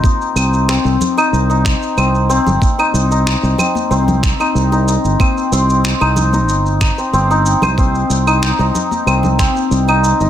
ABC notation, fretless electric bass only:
X:1
M:4/4
L:1/16
Q:1/4=93
K:Cm
V:1 name="Fretless electric bass" clef=bass
z2 C,,2 z C,, z2 C,,2 z2 C,,2 z G,,, | z2 C,,2 z C,, z2 C,,2 z2 C,,2 z G,,, | z2 C,,2 z C,,3 G,,,2 z2 G,,,2 z C,,- | C,, z C,,2 z C,, z2 C,,2 z2 C,,2 z G,,, |]